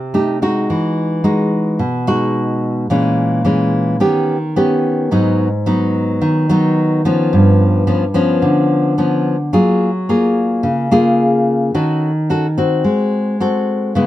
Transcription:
0.00 0.67 C3 medium
0.14 0.37 A3 soft
0.14 0.37 D#4 medium
0.14 0.37 G4 medium
0.42 1.20 G#3 medium
0.42 1.20 D#4 medium
0.42 1.21 F#4 medium
0.70 1.77 E3 medium
1.24 1.79 G#3 medium
1.24 1.79 D#4 medium
1.24 1.80 F#4 medium
1.79 2.87 B2 medium
2.07 2.86 G#3 medium
2.07 2.86 D#4 medium
2.07 2.86 F#4 medium
2.90 3.98 A#2 medium
2.90 3.41 E3 medium
2.90 3.41 G#3 medium
2.90 3.42 C#4 medium
3.45 3.98 E3 medium
3.45 3.99 G#3 soft
3.45 3.99 C#4 medium
4.00 5.08 D#3 medium
4.00 4.36 B3 soft
4.00 4.36 C#4 soft
4.00 4.37 G4 medium
4.56 5.09 B3 medium
4.56 5.09 C#4 soft
4.56 5.10 G4 medium
5.11 6.19 G#2 medium
5.11 5.47 F#3 medium
5.11 5.47 B3 medium
5.11 5.47 D#4 medium
5.66 6.45 F#3 medium
5.66 6.45 B3 medium
5.66 6.45 D#4 medium
6.21 7.29 D#3 medium
6.49 7.00 F#3 medium
6.49 7.01 B3 medium
6.49 7.01 D#4 medium
7.05 7.83 F3 medium
7.05 7.84 B3 medium
7.05 7.84 C#4 medium
7.33 8.40 G2 medium
7.87 8.04 F3 medium
7.87 8.04 B3 medium
7.87 8.04 C#4 soft
8.14 8.93 F3 medium
8.14 8.93 B3 medium
8.14 8.94 C#4 medium
8.42 9.50 D3 medium
8.98 9.35 F3 soft
8.98 9.35 B3 medium
8.98 9.36 C#4 medium
9.53 10.61 F#3 medium
9.53 9.89 A#3 medium
9.53 9.89 F4 medium
9.53 9.89 G#4 medium
10.09 10.87 A#3 medium
10.09 10.87 F4 soft
10.09 10.88 G#4 medium
10.63 11.71 C#3 medium
10.91 11.70 A#3 medium
10.91 11.70 F4 medium
10.91 11.70 G#4 medium
11.74 12.82 D#3 medium
11.74 12.10 C#4 soft
11.74 12.10 F#4 soft
11.74 12.10 A4 medium
12.30 12.46 C#4 soft
12.30 12.46 F#4 medium
12.30 12.46 A4 medium
12.58 13.36 C4 medium
12.58 13.36 F#4 medium
12.84 13.92 G#3 medium
13.40 13.93 C4 medium
13.40 13.93 F#4 medium
13.40 13.93 A4 medium
13.95 14.07 C#3 medium
13.95 14.07 G#3 soft
13.95 14.07 B3 medium
13.95 14.07 E4 medium

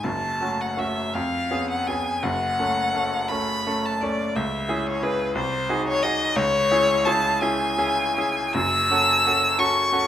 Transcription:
0.03 0.40 F#1 medium
0.03 0.40 F#2 medium
0.03 0.62 A5 medium
0.41 0.74 A3 soft
0.41 0.74 C#4 soft
0.41 0.74 F#4 soft
0.61 0.80 F#5 medium
0.77 1.10 A3 soft
0.77 1.10 C#4 soft
0.77 1.10 F#4 medium
0.77 1.16 E5 medium
1.15 1.49 F2 medium
1.15 1.69 F5 medium
1.51 1.83 B3 medium
1.51 1.83 C#4 soft
1.51 1.84 G#4 soft
1.70 1.89 F#5 medium
1.87 2.20 B3 soft
1.87 2.20 C#4 soft
1.87 2.20 G#4 soft
1.87 2.25 G#5 medium
2.23 2.57 F#1 medium
2.23 2.58 F#2 medium
2.23 3.30 F#5 loud
2.59 2.91 A3 soft
2.59 2.91 C#4 medium
2.59 2.91 A4 medium
2.95 3.26 A3 soft
2.95 3.27 C#4 soft
2.95 3.27 A4 medium
3.29 3.62 A3 medium
3.29 3.63 C#4 medium
3.29 3.63 A4 medium
3.29 3.87 B5 medium
3.67 3.98 A3 medium
3.67 3.98 C#4 soft
3.67 3.99 A4 medium
3.86 4.03 A5 medium
4.01 4.33 A3 soft
4.01 4.33 C#4 soft
4.01 4.33 A4 soft
4.01 4.37 D5 medium
4.36 4.68 C#2 medium
4.36 4.88 E5 medium
4.68 4.99 C#4 medium
4.68 4.99 E4 medium
4.68 4.99 G#4 medium
4.87 5.04 C#5 medium
5.02 5.33 C#4 soft
5.02 5.33 E4 medium
5.02 5.33 G#4 medium
5.02 5.35 B4 medium
5.35 5.68 C2 medium
5.35 5.85 C5 medium
5.69 5.99 D#4 medium
5.69 5.99 F#4 medium
5.69 6.00 G#4 medium
5.88 6.04 C#5 loud
6.03 6.33 D#4 medium
6.03 6.34 F#4 medium
6.03 6.34 G#4 medium
6.03 6.38 D#5 loud
6.36 6.69 C#2 medium
6.36 7.07 C#5 loud
6.71 7.02 C#4 medium
6.71 7.03 E4 medium
6.71 7.03 G#4 medium
7.05 7.38 C#4 medium
7.05 7.38 E4 medium
7.05 7.39 G#4 medium
7.05 7.43 A5 loud
7.41 7.75 C#4 medium
7.41 7.75 E4 medium
7.41 7.75 G#4 medium
7.41 8.55 G#5 loud
7.78 8.13 C#4 medium
7.78 8.13 E4 medium
7.78 8.14 G#4 medium
8.18 8.52 C#4 medium
8.18 8.52 E4 medium
8.18 8.52 G#4 medium
8.54 8.89 F#1 medium
8.54 8.90 F#2 medium
8.54 9.60 E6 loud
8.91 9.22 C#4 medium
8.91 9.22 F#4 medium
8.91 9.22 A4 medium
9.26 9.57 C#4 medium
9.26 9.57 F#4 medium
9.26 9.57 A4 medium
9.59 9.89 C#4 medium
9.59 9.89 F#4 medium
9.59 9.89 A4 medium
9.59 10.07 C#6 loud
9.92 10.07 C#4 medium
9.92 10.07 F#4 medium
9.92 10.07 A4 medium

